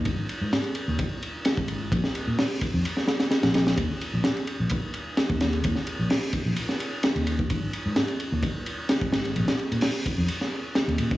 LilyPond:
<<
  \new Staff \with { instrumentName = "Fingered electric bass" } { \clef bass \time 4/4 \key aes \major \tempo 4 = 129 aes,,16 r8 aes,16 r8. ees,16 r4 r16 aes,,8. | bes,,16 r8 bes,16 r8. f,16 r4 r16 bes,,8. | ees,16 r8 bes,,16 r8. bes,,16 r4 r16 ees,8. | ees,16 r8 bes,,16 r8. bes,,16 r4 r16 ees,8. |
aes,,16 r8 aes,16 r8. ees,16 r4 r16 aes,,8. | bes,,16 r8 bes,16 r8. f,16 r4 r16 ees,16 bes,16 r16 | }
  \new DrumStaff \with { instrumentName = "Drums" } \drummode { \time 4/4 <bd cymr>8 cymr8 <cymr sn>16 cymr16 cymr8 <bd cymr>8 cymr8 <cymr sn>16 bd16 cymr8 | <bd cymr>16 sn16 cymr8 <hho sn>8 <bd cymr>8 cymr16 sn16 <cymr sn>16 <cymr sn>16 <cymr sn>16 <cymr sn>16 <cymr sn>16 <cymr sn>16 | <bd cymr>8 cymr8 <cymr sn>16 cymr16 cymr8 <bd cymr>8 cymr8 <cymr sn>16 bd16 <cymr sn>16 cymr16 | <bd cymr>16 sn16 cymr8 <hho sn>8 <bd cymr>8 cymr16 sn16 cymr8 <cymr sn>16 cymr16 cymr16 bd16 |
<bd cymr>8 cymr8 <cymr sn>16 cymr16 cymr8 <bd cymr>8 cymr8 <cymr sn>16 bd16 <cymr sn>16 cymr16 | cymr16 <cymr sn>16 cymr16 cymr16 <hho sn>8 <bd cymr>8 cymr16 sn8. <cymr sn>16 cymr16 cymr16 bd16 | }
>>